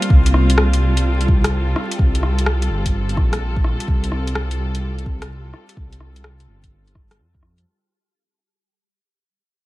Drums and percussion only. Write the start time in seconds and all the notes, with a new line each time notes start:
0.02 closed hi-hat
0.10 kick
0.26 closed hi-hat
0.34 cross-stick
0.50 closed hi-hat
0.58 cross-stick
0.73 closed hi-hat
0.97 closed hi-hat
1.21 closed hi-hat
1.28 kick
1.44 cross-stick, closed hi-hat
1.76 cross-stick
1.91 closed hi-hat
1.99 kick
2.15 closed hi-hat
2.23 cross-stick
2.39 closed hi-hat
2.46 cross-stick
2.62 closed hi-hat
2.86 kick, closed hi-hat
3.09 closed hi-hat
3.17 kick, cross-stick
3.33 cross-stick, closed hi-hat
3.56 kick
3.64 cross-stick
3.80 closed hi-hat
3.88 kick
4.04 closed hi-hat
4.12 cross-stick
4.27 closed hi-hat
4.35 cross-stick
4.51 closed hi-hat
4.75 closed hi-hat
4.98 closed hi-hat
5.06 kick
5.22 cross-stick, closed hi-hat
5.54 cross-stick
5.69 closed hi-hat
5.77 kick
5.93 closed hi-hat
6.00 cross-stick
6.16 closed hi-hat
6.24 cross-stick
6.40 closed hi-hat
6.64 kick, closed hi-hat
6.87 closed hi-hat
6.95 kick, cross-stick
7.11 cross-stick, closed hi-hat
7.34 kick
7.43 cross-stick
7.58 closed hi-hat